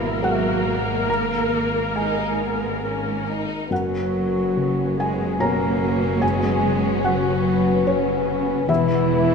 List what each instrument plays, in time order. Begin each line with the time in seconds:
Already playing: double bass section G#1, felt piano G#2 B2 D#5 E5, harp G#2 B2 G#4 A#4, cello section E3, violin section A#3, clarinet E4, viola section A#4
0.22 cello section F#3, felt piano G#3 A#4 F#5, clarinet F#4
0.65 harp G#3
1.07 harp G#2, cello section A#3, clarinet A#4, felt piano A#5
1.53 harp D#3
1.96 cello section G#3, violin section D#4, clarinet G#4, harp A#4, felt piano G#5
2.42 violin section B3
2.85 violin section C#4, harp A#4
3.28 violin section D#4
3.70 double bass section F#1, felt piano F#2 F#5, harp F#2, cello section F#3, viola section F#3, violin section B3 C#4, clarinet F#4
4.15 harp C#4
4.57 felt piano C#3, harp F#4
4.97 cello section G#3, clarinet G#4, felt piano G#5
5.40 felt piano B2 F#4 C#5 A#5, cello section A#3, clarinet A#4, harp C#5
5.81 harp F#3
6.21 harp F#2, cello section G#3, clarinet G#4, felt piano G#5
6.64 harp C#3
7.04 cello section F#3, clarinet F#4, harp F#4, felt piano F#5
7.46 harp B4
7.86 cello section C#3, clarinet C#4, felt piano C#5, harp C#5
8.28 harp B3
8.68 double bass section E1, felt piano E2 E5, harp E2, cello section E3, viola section G#3, violin section B3 E4, clarinet E4
9.10 harp B3